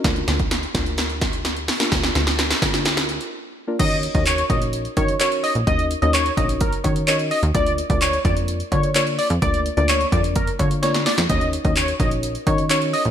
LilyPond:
<<
  \new Staff \with { instrumentName = "Analog synth lead" } { \time 4/4 \key ees \minor \tempo 4 = 128 r1 | r1 | ees''8 r16 ees''16 des''8 ees''16 r8. des''8 des''16 r16 ees''16 r16 | ees''8 r16 ees''16 des''8 ees''16 r16 bes'8 des''16 r16 des''16 r16 ees''16 r16 |
d''8 r16 d''16 des''8 d''16 r8. des''8 des''16 r16 d''16 r16 | d''8 r16 d''16 des''8 d''16 r16 bes'8 des''16 r16 des''16 r16 d''16 r16 | ees''8 r16 ees''16 des''8 ees''16 r8. des''8 des''16 r16 ees''16 r16 | }
  \new Staff \with { instrumentName = "Synth stab" } { \time 4/4 \key ees \minor <bes d' f' bes'>4 r8 <bes d' f' bes'>4. r8. <bes d' f' bes'>16 | <bes d' f' bes'>4 r8 <bes d' f' bes'>4. r8. <bes d' f' bes'>16 | <des' ees' ges' bes' des''>8 r16 <des' ees' ges' bes' des''>8 r16 <des' ees' ges' bes' des''>8. r16 <des' ees' ges' bes' ees''>16 r16 <des' ees' ges' bes' des''>8. r16 | <des' ees' ges' bes' ees''>8 r16 <des' ees' ges' bes' des''>8 r16 <des' ees' ges' bes' des''>8. r16 <des' ees' ges' bes' des''>16 r16 <des' ees' ges' bes' ees''>8. r16 |
<bes d' f' bes' d''>8 r16 <bes d' f' bes' d''>8 r16 <bes d' f' bes' d''>8. r16 <bes d' f' bes' d''>16 r16 <bes d' f' bes' d''>8. r16 | <bes d' f' bes' d''>8 r16 <bes d' f' bes' d''>8 r16 <bes d' f' bes' d''>8. r16 <bes d' f' bes' f''>16 r16 <bes d' f' bes' d''>8. r16 | <des' ees' ges' bes' des''>8 r16 <des' ees' ges' bes' des''>8 r16 <des' ees' ges' bes' des''>8. r16 <des' ees' ges' bes' ees''>16 r16 <des' ees' ges' bes' des''>8. r16 | }
  \new Staff \with { instrumentName = "Analog synth bass" } { \clef bass \time 4/4 \key ees \minor d,8 d,4 d,2~ d,8 | d,8 d,4 d,4. r4 | ees,8. ees,8. bes,,4 ees4~ ees16 bes,,16 | ees,8. ees,8. bes,,4 ees4~ ees16 ees,16 |
d,8. d,8. f,4 d4~ d16 f,16 | d,8. d,8. f,4 d4~ d16 f,16 | ees,8. ees,8. bes,,4 ees4~ ees16 bes,,16 | }
  \new DrumStaff \with { instrumentName = "Drums" } \drummode { \time 4/4 <hh bd sn>16 hh16 <hh sn>16 <hh bd>16 <hh sn>16 hh16 <hh bd sn>16 hh16 <hh sn>16 hh16 <hh bd sn>16 hh16 <hh sn>16 hh16 <hho sn>16 <hh sn>16 | <hh bd sn>16 <hh sn>16 <hh sn>16 <hh sn>16 <hh sn>16 <hh sn>16 <hh bd sn>16 <hh sn>16 <hh sn>16 <hh sn>16 hh16 hh16 r4 | <cymc hh bd>16 hh16 hh16 <hh bd>16 <hc hh>16 hh16 <hh bd>16 hh16 hh16 hh16 <hh bd>16 hh16 <hc hh>16 hh16 hho16 hh16 | <hh bd>16 hh16 hh16 hh16 <hc hh>16 hh16 <hh bd>16 hh16 <hh bd>16 hh16 <hh bd>16 hh16 <hc hh>16 hh16 hho16 hh16 |
<hh bd>16 hh16 hh16 <hh bd>16 <hc hh>16 hh16 <hh bd>16 hh16 hh16 hh16 <hh bd>16 hh16 <hc hh>16 hh16 hho16 hh16 | <hh bd>16 hh16 hh16 hh16 <hc hh>16 hh16 <hh bd>16 hh16 <hh bd>16 hh16 <hh bd>16 hh16 <hh sn>16 <hh sn>16 <hho sn>16 <hh sn>16 | <hh bd>16 hh16 hh16 <hh bd>16 <hc hh>16 hh16 <hh bd>16 hh16 hh16 hh16 <hh bd>16 hh16 <hc hh>16 hh16 hho16 hh16 | }
>>